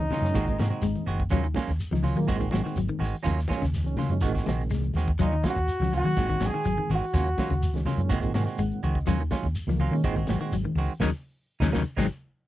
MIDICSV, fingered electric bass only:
0, 0, Header, 1, 3, 480
1, 0, Start_track
1, 0, Tempo, 484653
1, 1302, Time_signature, 4, 2, 24, 8
1, 12357, End_track
2, 0, Start_track
2, 0, Title_t, "Fingered electric bass"
2, 0, Program_c, 0, 33
2, 214, Note_on_c, 0, 42, 85
2, 326, Note_off_c, 0, 42, 0
2, 349, Note_on_c, 0, 32, 100
2, 563, Note_off_c, 0, 32, 0
2, 592, Note_on_c, 0, 44, 97
2, 697, Note_off_c, 0, 44, 0
2, 826, Note_on_c, 0, 32, 96
2, 933, Note_off_c, 0, 32, 0
2, 1056, Note_on_c, 0, 30, 92
2, 1275, Note_off_c, 0, 30, 0
2, 1310, Note_on_c, 0, 39, 101
2, 1523, Note_off_c, 0, 39, 0
2, 1661, Note_on_c, 0, 39, 78
2, 1769, Note_off_c, 0, 39, 0
2, 1904, Note_on_c, 0, 37, 87
2, 2120, Note_off_c, 0, 37, 0
2, 2132, Note_on_c, 0, 51, 93
2, 2244, Note_off_c, 0, 51, 0
2, 2260, Note_on_c, 0, 32, 108
2, 2477, Note_off_c, 0, 32, 0
2, 2503, Note_on_c, 0, 32, 91
2, 2611, Note_off_c, 0, 32, 0
2, 2747, Note_on_c, 0, 32, 92
2, 2854, Note_off_c, 0, 32, 0
2, 2970, Note_on_c, 0, 32, 94
2, 3084, Note_off_c, 0, 32, 0
2, 3227, Note_on_c, 0, 39, 97
2, 3440, Note_off_c, 0, 39, 0
2, 3582, Note_on_c, 0, 39, 75
2, 3812, Note_off_c, 0, 39, 0
2, 3812, Note_on_c, 0, 37, 96
2, 3924, Note_off_c, 0, 37, 0
2, 4050, Note_on_c, 0, 42, 83
2, 4163, Note_off_c, 0, 42, 0
2, 4193, Note_on_c, 0, 32, 99
2, 4404, Note_off_c, 0, 32, 0
2, 4425, Note_on_c, 0, 34, 84
2, 4639, Note_off_c, 0, 34, 0
2, 4663, Note_on_c, 0, 36, 89
2, 4878, Note_off_c, 0, 36, 0
2, 4896, Note_on_c, 0, 39, 82
2, 5114, Note_off_c, 0, 39, 0
2, 5148, Note_on_c, 0, 39, 102
2, 5361, Note_off_c, 0, 39, 0
2, 5509, Note_on_c, 0, 39, 71
2, 5613, Note_off_c, 0, 39, 0
2, 5743, Note_on_c, 0, 37, 88
2, 5959, Note_off_c, 0, 37, 0
2, 5983, Note_on_c, 0, 51, 97
2, 6090, Note_off_c, 0, 51, 0
2, 6108, Note_on_c, 0, 32, 92
2, 6321, Note_off_c, 0, 32, 0
2, 6334, Note_on_c, 0, 32, 92
2, 6446, Note_off_c, 0, 32, 0
2, 6591, Note_on_c, 0, 32, 86
2, 6695, Note_off_c, 0, 32, 0
2, 6828, Note_on_c, 0, 32, 92
2, 6934, Note_off_c, 0, 32, 0
2, 7070, Note_on_c, 0, 39, 98
2, 7283, Note_off_c, 0, 39, 0
2, 7422, Note_on_c, 0, 39, 80
2, 7653, Note_off_c, 0, 39, 0
2, 7653, Note_on_c, 0, 37, 91
2, 7765, Note_off_c, 0, 37, 0
2, 7900, Note_on_c, 0, 42, 86
2, 8008, Note_off_c, 0, 42, 0
2, 8026, Note_on_c, 0, 32, 91
2, 8241, Note_off_c, 0, 32, 0
2, 8264, Note_on_c, 0, 44, 89
2, 8372, Note_off_c, 0, 44, 0
2, 8503, Note_on_c, 0, 32, 88
2, 8612, Note_off_c, 0, 32, 0
2, 8751, Note_on_c, 0, 37, 95
2, 8963, Note_off_c, 0, 37, 0
2, 8985, Note_on_c, 0, 39, 109
2, 9200, Note_off_c, 0, 39, 0
2, 9339, Note_on_c, 0, 39, 73
2, 9448, Note_off_c, 0, 39, 0
2, 9575, Note_on_c, 0, 37, 84
2, 9795, Note_off_c, 0, 37, 0
2, 9816, Note_on_c, 0, 51, 98
2, 9927, Note_off_c, 0, 51, 0
2, 9940, Note_on_c, 0, 32, 101
2, 10158, Note_off_c, 0, 32, 0
2, 10187, Note_on_c, 0, 32, 91
2, 10294, Note_off_c, 0, 32, 0
2, 10428, Note_on_c, 0, 32, 85
2, 10535, Note_off_c, 0, 32, 0
2, 10650, Note_on_c, 0, 37, 100
2, 10765, Note_off_c, 0, 37, 0
2, 10900, Note_on_c, 0, 39, 97
2, 10992, Note_off_c, 0, 39, 0
2, 11506, Note_on_c, 0, 39, 99
2, 11595, Note_off_c, 0, 39, 0
2, 11618, Note_on_c, 0, 39, 101
2, 11711, Note_off_c, 0, 39, 0
2, 11857, Note_on_c, 0, 32, 96
2, 11951, Note_off_c, 0, 32, 0
2, 12357, End_track
3, 0, Start_track
3, 0, Title_t, "Muted fingered electric bass strokes"
3, 711, Note_on_c, 9, 29, 38
3, 810, Note_off_c, 9, 29, 0
3, 6471, Note_on_c, 9, 29, 37
3, 6570, Note_off_c, 9, 29, 0
3, 7312, Note_on_c, 9, 29, 36
3, 7411, Note_off_c, 9, 29, 0
3, 8393, Note_on_c, 9, 29, 40
3, 8492, Note_off_c, 9, 29, 0
3, 12357, End_track
0, 0, End_of_file